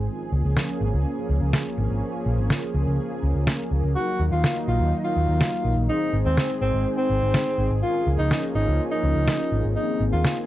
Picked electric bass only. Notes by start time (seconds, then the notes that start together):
0.32 C#2
0.44 C#2
0.81 G#1
0.93 C#2
1.29 C#2
1.41 C#2
1.78 G#1
1.90 G#1
2.26 A#1
2.38 G#1
2.74 C#2
2.87 C#2
3.23 C#2
3.35 C#2
3.71 C#2
3.83 C#2
4.20 D#2
4.32 D#2
4.68 A#1
4.80 D#2
5.16 D#2
5.28 D#2
5.65 A#1
5.77 A#1
6.13 G#1
6.25 D#2
6.61 G#1
6.73 G#1
7.10 G#1
7.22 G#1
7.58 G#1
7.71 G#1
8.07 C#2
8.19 C#2
8.55 G#1
8.67 C#2
9.03 C#2
9.15 C#2
9.52 G#1
9.64 G#1
10.00 G#1
10.12 D#2